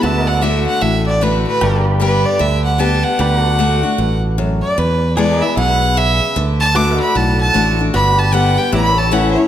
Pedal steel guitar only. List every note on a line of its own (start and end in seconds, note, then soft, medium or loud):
0.04 1.60 F#4 medium
0.04 0.30 B4 medium
0.04 0.31 E5 medium
0.30 1.61 A4 medium
0.30 1.61 D5 medium
1.61 3.18 G4 medium
1.61 1.88 A4 medium
1.61 3.19 D5 medium
1.88 3.19 B4 medium
3.20 3.40 G4 medium
3.20 3.46 B4 medium
3.20 4.77 D5 medium
3.40 4.77 F#4 medium
3.46 4.77 A4 medium
5.17 6.35 G#4 medium
5.17 5.43 A4 medium
5.17 5.45 D5 medium
5.43 6.35 B4 medium
5.43 6.36 E5 medium
6.75 7.93 F#4 medium
6.75 7.01 B4 medium
6.75 7.02 E5 medium
7.01 7.93 A4 medium
7.01 7.94 D5 medium
7.94 8.14 F#4 medium
7.94 8.73 B4 medium
7.94 8.73 D5 medium
8.14 8.72 G4 medium
8.73 9.48 E4 medium
8.73 8.99 B4 medium
8.73 8.94 D5 medium
8.94 9.48 C#5 medium
8.99 9.48 A4 medium